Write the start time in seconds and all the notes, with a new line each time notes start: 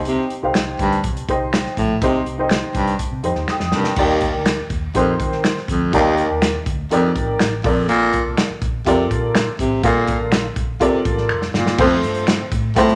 Already playing: C2 D#4 G4 C5 D#5
0.05 C3, closed hi-hat
0.30 closed hi-hat
0.43 C2 D#4 G4 C5 F5
0.54 C2, finger snap, snare, closed hi-hat
0.79 D2 G2, kick, closed hi-hat
0.92 closed hi-hat
1.04 C2, kick, closed hi-hat
1.17 closed hi-hat
1.28 C2 D#4 G4 C5 D#5, kick, closed hi-hat
1.53 finger snap, snare, closed hi-hat
1.66 snare
1.77 A#1 A2, kick, closed hi-hat
2.02 C2 C3 D#4 G4 C5 D#5, kick, closed hi-hat
2.26 C2, closed hi-hat
2.38 D#4 G4 C5 D#5
2.49 finger snap, snare, closed hi-hat
2.75 C2 G2, kick, closed hi-hat
2.88 closed hi-hat
2.99 kick, closed hi-hat
3.12 C3
3.23 F2 D#4 G4 C5 D#5, closed hi-hat
3.35 D#2, snare
3.48 G5 D#6, finger snap, muted fingered electric bass stroke, snare
3.60 F2, snare
3.72 G2 C3 A#4 G5, snare
3.84 snare
3.96 D#2 D#4 G4 A#4 D5, kick, crash
4.21 kick, closed hi-hat
4.34 D2
4.45 finger snap, snare, closed hi-hat
4.70 D#2, kick, closed hi-hat
4.94 A#1 F2 D#4 G4 A#4 C5, kick, closed hi-hat
5.20 D#3, kick, closed hi-hat
5.32 snare
5.44 finger snap, snare, closed hi-hat
5.57 snare
5.68 D2 F2, kick, closed hi-hat
5.93 D#2 D#4 G4 A#4 D5, kick, closed hi-hat
6.17 closed hi-hat
6.31 D#2
6.42 finger snap, snare, closed hi-hat
6.66 D2, kick, closed hi-hat
6.91 F2 D#4 G4 A#4 D5, closed hi-hat
7.04 muted fingered electric bass stroke
7.16 A1, kick, closed hi-hat
7.39 A1, finger snap, snare, closed hi-hat
7.64 A#1 F2 F4 A4 A#4 D5, kick, open hi-hat
7.89 A#2, closed hi-hat
8.13 kick, closed hi-hat
8.26 C2
8.38 finger snap, snare, closed hi-hat
8.50 muted fingered electric bass stroke
8.62 A#1, kick, closed hi-hat
8.86 F2 C3 F4 A4 A#4 D5, kick, closed hi-hat
9.11 A#2, kick, closed hi-hat
9.35 finger snap, snare, closed hi-hat
9.59 A1 C3, kick, closed hi-hat
9.83 A#1 A#2 F4 A4 A#4 F5, kick, closed hi-hat
10.07 kick, closed hi-hat
10.20 A#1
10.32 finger snap, snare, closed hi-hat
10.56 A#1, kick, closed hi-hat
10.80 C3 F4 A4 A#4 D5, kick, closed hi-hat
10.94 muted fingered electric bass stroke
11.05 A1, kick, closed hi-hat
11.18 snare
11.29 F1, finger snap
11.42 snare
11.54 G1 A#2, snare
11.67 snare
11.78 F2 A3 C4 F4 A4 C5, kick, crash
12.03 G2, closed hi-hat
12.15 closed hi-hat
12.27 finger snap, snare, closed hi-hat
12.52 A2, kick, closed hi-hat
12.76 A2 A3 C4 F4 A4 C5, kick, closed hi-hat
12.89 closed hi-hat